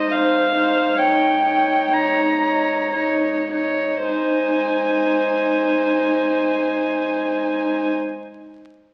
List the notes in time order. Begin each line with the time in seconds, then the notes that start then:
Already playing: D#4 C5 D#5
0.11 G#2 D#4 C5 F5
0.55 D#4 C5
0.98 G#2 D#4 C#5 G5
1.43 D#4 C#5
1.91 G#2 D#4 C#5 A#5
2.42 D#4 C#5
2.93 G#2 D#4 C#5
3.53 D#4 C#5
4.09 G#2 D#4 C5 G#5